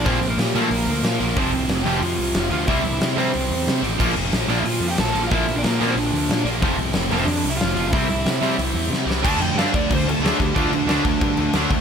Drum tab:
CC |--------|--------|--------|x-------|
HH |oooooooo|oooooooo|oooooooo|-ooooooo|
SD |--o---o-|--o---o-|--o---o-|--o---o-|
BD |o-------|o-------|o-------|o-------|

CC |--------|--------|--------|xxxxxxxx|
HH |oooooooo|oooooooo|oooooo--|--------|
SD |--o---o-|--o---o-|--o---oo|--o---o-|
BD |o-------|o-------|o-------|o--oo--o|

CC |xxxxxxxx|
HH |--------|
SD |--o---o-|
BD |o--oo--o|